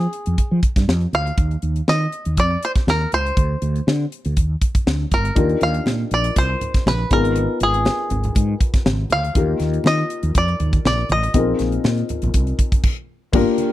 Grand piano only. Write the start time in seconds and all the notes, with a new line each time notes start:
5.35 D4 D#4 F4 G4 A#4
7.11 B3 D#4 F4 G#4 A#4
9.35 A#3 D#4 F4 G4 A#4
11.34 C4 D#4 F4 G#4 A#4
13.33 A#3 D4 F4 G4 A#4